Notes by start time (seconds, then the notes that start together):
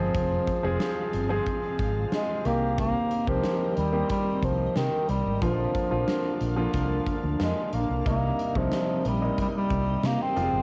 Already playing: F3 G#3 C4 G#4 F5
0.00 G1
0.15 F1, kick, closed hi-hat
0.47 kick, closed hi-hat
0.63 F1 F3 G#3 C4 G#4
0.80 snare, closed hi-hat
1.13 G1, closed hi-hat
1.29 F3 G#3 C4 G#4
1.46 kick, closed hi-hat
1.79 G#1, kick, closed hi-hat
2.12 G#3, snare, closed hi-hat
2.45 C2 D#3 A#3 C4 G4 A#4 D#5, closed hi-hat
2.78 A#3, kick, closed hi-hat
3.11 closed hi-hat
3.27 C2 D#3 F3 A#3 C4 G4, kick
3.44 snare, closed hi-hat
3.77 D#2 G3, closed hi-hat
3.92 D#3 A#3 C4 G4
4.09 G3, kick, closed hi-hat
4.43 C2 F3, kick, closed hi-hat
4.76 C3 D#3, snare, closed hi-hat
5.09 C2 G3, closed hi-hat
5.26 G#1
5.41 A#1 D3 F3 A#3 D4 F4 F5, kick, closed hi-hat
5.75 kick, closed hi-hat
5.90 A#1 D3 F3 A#3 F4
6.08 snare, closed hi-hat
6.41 A#1, closed hi-hat
6.56 D3 F3 A#3 F4
6.74 C2, kick, closed hi-hat
7.07 kick, closed hi-hat
7.24 D2
7.40 F2 G#3, snare, closed hi-hat
7.73 A#1 A#3, closed hi-hat
7.89 C2
8.05 C2 C3 G3 A#3 C4 D#4 D#5, kick, closed hi-hat
8.39 closed hi-hat
8.55 C2 C3 F3 G3 A#3 D#4, kick
8.72 snare, closed hi-hat
9.05 A#1 G3, closed hi-hat
9.21 C3 G3 A#3 D#4
9.38 G3, kick, closed hi-hat
9.57 G3
9.71 C2, kick, closed hi-hat
10.04 C3 A#3, snare, closed hi-hat
10.22 C4
10.36 F1 C3 F3 G3 F4, closed hi-hat
10.43 G#3
10.53 G1